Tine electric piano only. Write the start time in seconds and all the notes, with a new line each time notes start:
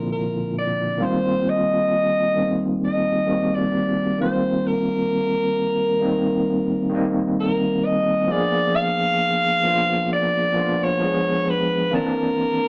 Already playing: A#2 D3 F3 A#3 D4 E4 F4
0.98 D#3 G3 A#3 C4
1.02 F4
2.35 D#3 G3 A#3 C4
2.40 D#4
3.26 D#3 G3 A#3 C4
3.31 F#4
3.37 G4
4.18 D#3 F#3 A#3 C4
4.23 G3 F4
5.99 D#3 G3 A#3 C4
6.03 D#4
6.89 D#3 G3 A#3 C4
6.95 D#4
8.27 F3 A#3 B3 D4
8.31 G#4
9.63 F3 A#3 B3 D4
9.68 F4
10.54 F3 A#3 B3 D4
10.59 F4
11.00 F3 G#3 B3 D4
11.04 G#4
11.90 D#3 A#3 C4 D4
11.95 E3 A5